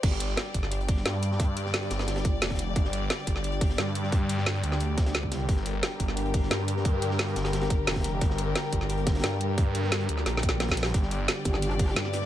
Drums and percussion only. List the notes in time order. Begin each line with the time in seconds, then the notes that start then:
0.03 kick, closed hi-hat, crash
0.11 snare
0.20 closed hi-hat
0.37 snare, closed hi-hat
0.54 kick, closed hi-hat
0.63 snare
0.72 closed hi-hat
0.81 closed hi-hat
0.88 kick, closed hi-hat, open hi-hat
0.97 snare
1.05 snare, closed hi-hat
1.23 closed hi-hat
1.31 snare
1.40 kick, closed hi-hat
1.57 closed hi-hat
1.66 snare
1.74 snare, closed hi-hat
1.82 closed hi-hat
1.90 snare, closed hi-hat
1.99 snare, closed hi-hat
2.08 snare, closed hi-hat
2.16 snare, closed hi-hat
2.25 kick, closed hi-hat
2.42 snare, closed hi-hat
2.46 snare, closed hi-hat
2.50 kick, snare, closed hi-hat
2.55 snare, closed hi-hat
2.59 closed hi-hat
2.76 kick, closed hi-hat
2.85 snare
2.93 closed hi-hat
3.10 snare, closed hi-hat
3.27 kick, closed hi-hat
3.36 snare
3.44 closed hi-hat
3.52 closed hi-hat
3.61 kick, closed hi-hat, open hi-hat
3.70 snare
3.78 snare, closed hi-hat
3.95 closed hi-hat
4.03 snare
4.12 kick, closed hi-hat
4.29 closed hi-hat
4.38 snare
4.46 snare, closed hi-hat
4.55 closed hi-hat
4.63 closed hi-hat
4.71 snare
4.80 closed hi-hat
4.98 kick, snare, closed hi-hat
5.06 snare, closed hi-hat
5.15 snare, closed hi-hat
5.23 kick
5.32 snare, closed hi-hat
5.49 kick, closed hi-hat
5.56 snare
5.66 closed hi-hat
5.83 snare, closed hi-hat
6.00 kick, closed hi-hat
6.08 snare
6.17 closed hi-hat
6.26 closed hi-hat
6.33 kick, closed hi-hat, open hi-hat
6.43 snare
6.50 snare, closed hi-hat
6.68 closed hi-hat
6.77 snare
6.85 kick, closed hi-hat
7.02 closed hi-hat
7.11 snare
7.19 snare, closed hi-hat
7.28 closed hi-hat
7.36 snare, closed hi-hat
7.45 snare, closed hi-hat
7.53 snare, closed hi-hat
7.61 snare, closed hi-hat
7.70 kick, closed hi-hat
7.87 snare, closed hi-hat
7.91 snare, closed hi-hat
7.96 kick, snare, closed hi-hat
8.01 snare, closed hi-hat
8.04 closed hi-hat
8.21 kick, closed hi-hat
8.30 snare
8.38 closed hi-hat
8.55 snare, closed hi-hat
8.73 kick, closed hi-hat
8.81 snare
8.89 closed hi-hat
8.97 closed hi-hat
9.07 kick, snare, closed hi-hat
9.15 snare, closed hi-hat
9.19 snare, closed hi-hat
9.24 snare, closed hi-hat
9.41 closed hi-hat
9.58 kick, closed hi-hat
9.75 closed hi-hat
9.83 snare
9.92 snare, closed hi-hat
10.01 closed hi-hat
10.09 closed hi-hat
10.18 snare
10.26 snare, closed hi-hat
10.37 snare
10.42 kick, closed hi-hat
10.49 snare
10.60 snare, closed hi-hat
10.68 kick, snare, closed hi-hat
10.72 snare
10.77 snare, closed hi-hat
10.83 snare, closed hi-hat
10.86 snare
10.94 kick, closed hi-hat
11.02 snare
11.11 closed hi-hat
11.28 snare, closed hi-hat
11.45 kick, closed hi-hat
11.54 snare
11.62 closed hi-hat
11.71 closed hi-hat
11.79 kick, closed hi-hat, open hi-hat
11.88 snare
11.96 snare, closed hi-hat
12.05 snare
12.13 snare, closed hi-hat, open hi-hat
12.21 snare